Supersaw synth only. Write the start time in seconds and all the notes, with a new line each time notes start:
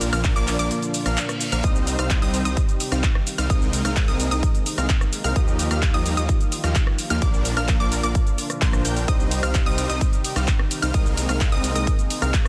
0.13 F3 A#3 D4 A#4 F5
0.36 F3 A#3 D4 A#4 D5
0.59 F3 A#3 D4 A#4 D5
1.06 F3 A#3 D4 A#4 F5
1.52 F3 A#3 D4 A#4 F5
1.64 G3 C4 D#4 C5 D#5
1.99 G3 C4 D#4 C5 F5
2.22 G3 C4 D#4 C5 D#5
2.45 G3 C4 D#4 C5 D#5
2.92 G3 C4 D#4 C5 F5
3.38 G3 C4 D#4 C5 F5
3.50 G#3 C4 D#4 A#4 D#5
3.85 G#3 C4 D#4 A#4 F5
4.08 G#3 C4 D#4 A#4 D#5
4.31 G#3 C4 D#4 A#4 D#5
4.78 G#3 C4 D#4 A#4 F5
5.24 G#3 C4 D#4 A#4 F5
5.36 F3 A#3 G4
5.71 F3 A#3 D#4 G4 F5
5.94 F3 A#3 D#4 G4 D#5
6.17 F3 A#3 D#4 G4 D#5
6.64 F3 A#3 D#4 G4 F5
7.10 F3 A#3 D#4 G4 F5
7.22 F3 A#3 D4 A#4 D5
7.57 F3 A#3 D4 A#4 F5
7.80 F3 A#3 D4 A#4 D5
8.03 F3 A#3 D4 A#4 D5
8.62 F3 A#3 D4 A#4 C5
8.85 F3 A#3 D4 A#4 G5
9.08 G3 C4 D#4 C5 D#5
9.43 G3 C4 D#4 C5 F5
9.66 G3 C4 D#4 C5 D#5
9.89 G3 C4 D#4 C5 D#5
10.36 G3 C4 D#4 C5 F5
10.82 G3 C4 D#4 C5 F5
10.94 G#3 C4 D#4 A#4 D#5
11.29 G#3 C4 D#4 A#4 F5
11.52 G#3 C4 D#4 A#4 D#5
11.75 G#3 C4 D#4 A#4 D#5
12.22 G#3 C4 D#4 A#4 F5